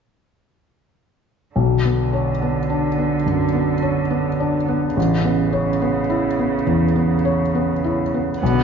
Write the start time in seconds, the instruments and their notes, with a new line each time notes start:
1.55 felt piano B1, cello D3
1.85 felt piano B3
2.13 felt piano C#5
2.42 felt piano B3
2.70 felt piano D4
2.98 felt piano B3
3.26 felt piano F#2
3.54 felt piano B3
3.82 felt piano C#5
4.10 felt piano B3
4.40 felt piano D4
4.68 felt piano B3
4.95 felt piano A1, cello C#3
5.24 felt piano B3
5.53 felt piano C#5
5.82 felt piano B3
6.10 felt piano E4
6.39 felt piano B3
6.67 felt piano E2
6.96 felt piano B3
7.25 felt piano C#5
7.55 felt piano B3
7.84 felt piano E4
8.14 felt piano B3
8.40 felt piano B1, cello D3, viola B3